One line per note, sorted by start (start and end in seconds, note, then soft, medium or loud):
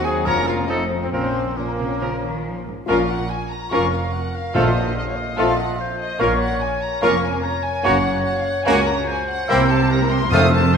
0.00 0.24 D#2 loud
0.00 0.24 D#2 medium
0.00 0.25 F#3 medium
0.00 0.26 F#3 medium
0.00 0.25 C4 medium
0.00 0.25 D#4 medium
0.00 0.27 G#4 medium
0.00 0.11 G#5 loud
0.04 0.28 G#4 medium
0.04 0.26 G#5 loud
0.25 0.68 F1 medium
0.25 0.68 F2 medium
0.25 0.66 F2 loud
0.25 0.68 F3 medium
0.25 0.41 F3 medium
0.25 0.68 F3 medium
0.25 0.69 A#3 medium
0.25 0.69 C#4 medium
0.25 0.49 A#4 medium
0.25 0.46 A#4 medium
0.25 0.41 C#5 medium
0.25 0.47 A#5 loud
0.47 0.57 F4 medium
0.47 0.68 F4 medium
0.47 0.53 F5 medium
0.47 0.55 F5 medium
0.67 1.12 F1 medium
0.67 1.12 F2 medium
0.67 1.12 F3 medium
0.67 0.85 F3 medium
0.67 1.12 A3 medium
0.67 1.13 A3 medium
0.67 1.12 C4 medium
0.67 0.83 D#4 medium
0.67 0.84 D#4 medium
0.67 0.84 A4 medium
0.67 0.75 D#5 medium
0.67 1.01 D#5 medium
1.00 1.12 C4 medium
1.00 1.11 C5 medium
1.00 1.06 C5 medium
1.12 2.64 A#1 medium
1.12 1.52 A#2 medium
1.12 1.56 F3 medium
1.12 1.29 F3 medium
1.12 1.56 A#3 medium
1.12 1.55 A#3 medium
1.12 1.56 A#3 medium
1.12 1.56 C4 medium
1.12 1.58 C4 medium
1.12 1.56 C#4 medium
1.12 1.55 C#4 medium
1.12 1.28 A#4 medium
1.12 1.56 C5 loud
1.12 1.37 C5 medium
1.56 1.65 A#2 medium
1.56 2.65 F3 medium
1.56 2.64 A#3 medium
1.56 2.65 A#3 medium
1.56 2.66 A#3 medium
1.56 2.64 C#4 medium
1.56 2.65 C#4 medium
1.56 2.67 A#4 medium
1.79 1.87 C3 medium
2.01 2.09 C#3 medium
2.01 2.17 F3 medium
2.01 2.16 A#4 medium
2.23 2.44 D#3 medium
2.45 2.66 F3 medium
2.67 2.75 G#2 medium
2.86 3.23 A#1 loud
2.86 3.23 A#2 medium
2.86 3.08 F3 medium
2.86 3.03 A#3 medium
2.86 3.01 C#4 medium
2.86 3.08 C#4 medium
2.86 3.02 F4 medium
2.86 3.08 F4 medium
2.86 3.03 A#4 medium
2.86 3.08 A#4 medium
2.86 3.07 F5 loud
2.86 3.03 F5 medium
2.86 3.07 C#6 medium
3.09 3.30 F#5 loud
3.29 3.50 G#5 loud
3.50 3.71 A#5 loud
3.70 4.06 F1 medium
3.70 4.07 F2 medium
3.70 3.91 F3 medium
3.70 3.86 A#3 medium
3.70 3.91 C#4 medium
3.70 3.87 C#4 medium
3.70 3.86 F4 medium
3.70 3.91 F4 medium
3.70 3.91 A#4 medium
3.70 3.86 A#4 medium
3.70 4.51 A#4 medium
3.70 3.87 F5 medium
3.70 3.92 C#6 loud
3.70 3.91 C#6 medium
3.92 4.12 F5 medium
4.12 4.34 F#5 loud
4.33 4.55 F5 loud
4.54 4.89 A#1 medium
4.54 5.14 A#2 loud
4.54 4.90 A#2 medium
4.54 4.74 F3 medium
4.54 4.70 A3 medium
4.54 4.69 C4 medium
4.54 4.74 C4 medium
4.54 4.74 F4 medium
4.54 4.70 F4 medium
4.54 4.74 A4 medium
4.54 4.69 A4 medium
4.54 4.96 C5 medium
4.54 4.96 D#5 loud
4.54 4.69 F5 medium
4.54 4.74 C6 medium
4.97 5.08 D#5 loud
4.97 5.40 F5 medium
5.08 5.18 C#5 medium
5.16 5.37 D#5 loud
5.37 5.72 A#1 medium
5.37 5.72 A#2 medium
5.37 5.58 F3 medium
5.37 5.52 A3 medium
5.37 5.53 C4 medium
5.37 5.58 C4 medium
5.37 5.57 F4 medium
5.37 5.52 F4 medium
5.37 5.57 A4 medium
5.37 5.52 A4 medium
5.37 5.79 D#5 medium
5.37 5.58 F5 loud
5.37 5.52 F5 medium
5.37 5.57 C6 medium
5.57 5.79 F#5 loud
5.78 6.20 C5 loud
5.78 5.99 F5 medium
5.99 6.19 D#5 loud
6.19 6.54 A#1 loud
6.19 6.54 A#2 medium
6.19 6.34 A#3 medium
6.19 6.39 A#3 medium
6.19 6.34 C#4 medium
6.19 6.39 C#4 medium
6.19 6.39 F4 medium
6.19 6.39 A#4 medium
6.19 6.34 A#4 medium
6.19 7.01 C#5 loud
6.19 6.34 F5 medium
6.19 6.40 F5 loud
6.19 6.39 C#6 medium
6.38 6.59 F#5 loud
6.60 6.81 G#5 loud
6.81 7.02 A#5 loud
7.01 7.36 F1 medium
7.01 7.37 F2 medium
7.01 7.16 A#3 medium
7.01 7.17 A#3 medium
7.01 7.21 A#3 medium
7.01 7.16 C#4 medium
7.01 7.22 C#4 medium
7.01 7.21 F4 medium
7.01 7.21 A#4 medium
7.01 7.16 A#4 medium
7.01 7.46 A#4 medium
7.01 7.16 F5 medium
7.01 7.21 C#6 medium
7.01 7.23 C#6 loud
7.23 7.43 G#5 loud
7.42 9.09 C#5 loud
7.42 7.63 A#5 loud
7.63 7.84 G#5 loud
7.83 8.18 F#1 loud
7.83 8.18 F#2 medium
7.83 7.97 A#3 medium
7.83 7.99 A#3 medium
7.83 8.03 A#3 medium
7.83 7.98 C#4 medium
7.83 8.04 C#4 medium
7.83 8.03 F#4 medium
7.83 7.99 F#4 medium
7.83 8.03 A#4 medium
7.83 7.98 C#5 medium
7.83 8.24 F#5 loud
7.83 8.03 C#6 loud
8.25 8.35 F#5 loud
8.37 8.46 F5 loud
8.45 8.66 F#5 loud
8.65 9.00 C#2 medium
8.65 9.01 C#2 loud
8.65 8.81 A#3 loud
8.65 8.85 A#3 loud
8.65 8.81 A#3 medium
8.65 8.85 C#4 medium
8.65 8.81 C#4 medium
8.65 8.85 F#4 medium
8.65 8.80 F#4 loud
8.65 8.85 A#4 medium
8.65 8.81 C#5 medium
8.65 8.86 G#5 loud
8.65 8.85 C#6 medium
8.86 9.07 A#5 loud
9.07 9.92 C5 loud
9.07 9.27 G#5 loud
9.29 9.49 F#5 loud
9.48 10.28 C2 loud
9.48 10.28 C3 loud
9.48 9.58 G3 medium
9.48 9.63 A#3 loud
9.48 9.59 C4 medium
9.48 9.64 C4 medium
9.48 9.63 E4 medium
9.48 9.58 G4 medium
9.48 9.58 C5 medium
9.48 9.63 C5 medium
9.48 9.70 G5 loud
9.48 9.68 E6 medium
9.60 9.70 A#3 medium
9.60 9.70 E4 medium
9.60 9.70 A#4 medium
9.69 9.80 G3 medium
9.69 9.80 C4 medium
9.69 9.80 G4 medium
9.69 9.80 C5 medium
9.69 9.90 A5 loud
9.80 9.90 A#3 medium
9.80 9.90 E4 medium
9.80 9.90 A#4 medium
9.90 10.00 G3 medium
9.90 10.00 C4 medium
9.90 10.00 G4 medium
9.90 10.32 A#4 loud
9.90 10.00 C5 medium
9.90 10.11 A#5 loud
10.01 10.11 A#3 medium
10.01 10.11 E4 medium
10.01 10.11 A#4 medium
10.11 10.21 G3 medium
10.11 10.21 C4 medium
10.11 10.21 G4 medium
10.11 10.21 C5 medium
10.11 10.31 C6 loud
10.21 10.32 A#3 medium
10.21 10.31 E4 medium
10.21 10.32 A#4 medium
10.31 10.77 F1 loud
10.31 10.77 F2 loud
10.31 10.42 F3 medium
10.31 10.47 A3 loud
10.31 10.47 A3 medium
10.31 10.42 C4 medium
10.31 10.47 C4 medium
10.31 10.41 D#4 medium
10.31 10.46 F4 medium
10.31 10.76 A4 loud
10.31 10.41 C5 medium
10.31 10.47 C5 medium
10.31 10.52 D#6 loud
10.31 10.50 F6 loud
10.41 10.53 A3 medium
10.41 10.53 D#4 medium
10.41 10.52 F4 medium
10.41 10.52 A4 medium
10.51 10.63 F3 medium
10.51 10.63 C4 medium
10.51 10.63 D#4 medium
10.51 10.62 C5 medium
10.51 10.73 A5 loud
10.62 10.74 A3 medium
10.62 10.74 D#4 medium
10.62 10.73 F4 medium
10.62 10.73 A4 medium
10.72 10.77 F3 medium
10.72 10.77 C4 medium
10.72 10.77 D#4 medium
10.72 10.77 C5 medium
10.72 10.77 C5 loud
10.72 10.77 C6 loud